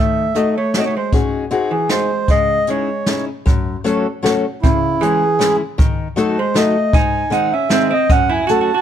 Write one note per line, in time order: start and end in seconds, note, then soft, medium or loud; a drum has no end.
0.00 0.26 D#3 medium
0.00 0.32 A3 medium
0.00 0.36 E5 medium
0.35 0.55 A3 medium
0.35 0.55 D#4 medium
0.35 0.56 F#4 medium
0.35 0.56 A4 medium
0.35 0.55 D#5 medium
0.35 closed hi-hat soft
0.57 0.74 A3 medium
0.57 0.75 C#5 medium
0.74 0.79 A3 medium
0.74 0.95 A3 medium
0.74 0.95 D#4 medium
0.74 0.95 F#4 soft
0.74 0.96 A4 medium
0.74 0.80 C#5 medium
0.74 snare medium
0.74 closed hi-hat soft
0.79 0.84 C4 medium
0.79 0.84 D#5 medium
0.85 0.95 A3 medium
0.85 0.95 C#5 medium
0.97 1.12 G#3 medium
0.97 1.13 C5 medium
1.12 1.44 C#4 medium
1.12 1.44 D#4 medium
1.12 1.44 F#4 medium
1.12 1.44 G#4 medium
1.12 kick medium
1.12 closed hi-hat soft
1.50 1.71 C4 medium
1.50 1.71 D#4 medium
1.50 1.71 F#4 medium
1.50 1.72 G#4 medium
1.50 closed hi-hat soft
1.71 1.88 E3 medium
1.71 1.90 G#4 medium
1.89 2.26 G#3 medium
1.89 2.10 C4 medium
1.89 2.10 D#4 medium
1.89 2.10 F#4 medium
1.89 2.10 G#4 medium
1.89 2.30 C5 medium
1.89 snare medium
1.89 closed hi-hat soft
2.28 2.58 C#3 medium
2.28 2.66 G#3 medium
2.28 2.70 D#5 loud
2.28 kick medium
2.28 closed hi-hat soft
2.67 3.25 G#3 medium
2.67 2.88 C#4 medium
2.67 2.89 D#4 medium
2.67 2.89 E4 medium
2.67 2.89 G#4 medium
2.67 3.25 C#5 medium
2.67 closed hi-hat soft
3.06 3.28 C#4 medium
3.06 3.28 D#4 medium
3.06 3.28 E4 medium
3.06 3.28 G#4 medium
3.06 snare medium
3.06 closed hi-hat soft
3.46 3.75 F#2 loud
3.46 kick medium
3.46 closed hi-hat soft
3.84 4.05 F#3 medium
3.84 4.06 A3 medium
3.84 4.06 C#4 medium
3.84 4.06 F#4 medium
3.84 4.06 A4 medium
3.84 closed hi-hat soft
4.23 4.44 F#3 medium
4.23 4.44 A3 medium
4.23 4.44 C#4 medium
4.23 4.44 F#4 medium
4.23 4.45 A4 medium
4.23 snare medium
4.23 closed hi-hat soft
4.62 4.99 C#3 medium
4.62 4.93 C#3 medium
4.62 5.03 E4 loud
4.62 kick medium
4.62 closed hi-hat soft
5.01 5.56 E3 loud
5.01 5.22 E3 medium
5.01 5.22 G#3 medium
5.01 5.23 C#4 medium
5.01 5.23 E4 medium
5.01 5.56 G#4 loud
5.01 5.23 G#4 medium
5.01 closed hi-hat medium
5.39 5.60 E3 medium
5.39 5.60 G#3 medium
5.39 5.60 C#4 medium
5.39 5.60 E4 medium
5.39 5.61 G#4 medium
5.39 snare medium
5.39 closed hi-hat medium
5.78 6.07 D#3 loud
5.78 kick loud
5.78 closed hi-hat medium
6.16 6.37 F#3 medium
6.16 6.37 A3 medium
6.16 6.37 D#4 medium
6.16 6.37 F#4 medium
6.16 6.37 A4 loud
6.16 closed hi-hat medium
6.39 6.55 G#3 medium
6.39 6.57 C5 medium
6.54 6.75 F#3 medium
6.54 6.75 A3 medium
6.54 6.91 A3 medium
6.54 6.75 D#4 medium
6.54 6.75 F#4 medium
6.54 6.75 A4 medium
6.54 6.95 D#5 medium
6.54 snare medium
6.54 closed hi-hat medium
6.93 7.22 G#2 medium
6.93 7.30 D#4 medium
6.93 7.33 G#5 loud
6.93 kick loud
6.93 closed hi-hat medium
7.30 7.51 D#3 medium
7.30 7.52 G#3 medium
7.30 7.52 C4 medium
7.30 7.52 D#4 medium
7.30 7.51 D#4 medium
7.30 7.52 G#4 medium
7.30 7.53 F#5 medium
7.30 closed hi-hat medium
7.52 7.70 C#4 medium
7.52 7.71 E5 medium
7.69 7.91 D#3 medium
7.69 7.91 G#3 medium
7.69 7.91 C4 medium
7.69 7.89 C4 medium
7.69 7.91 D#4 medium
7.69 7.92 G#4 medium
7.69 7.93 E5 loud
7.69 snare medium
7.69 closed hi-hat soft
7.91 8.08 C4 medium
7.91 8.11 D#5 loud
8.10 8.39 F#2 medium
8.10 8.29 C#4 medium
8.10 8.32 F#5 loud
8.10 kick medium
8.10 closed hi-hat soft
8.29 8.47 E4 loud
8.29 8.50 G#5 medium
8.47 8.70 F#3 medium
8.47 8.70 A3 medium
8.47 8.70 C#4 medium
8.47 8.60 F#4 loud
8.47 8.70 F#4 medium
8.47 8.70 A4 medium
8.47 8.60 A5 loud
8.47 closed hi-hat medium
8.61 8.73 F#4 medium
8.61 8.75 A5 medium
8.74 8.81 F#4 medium
8.74 8.81 A5 loud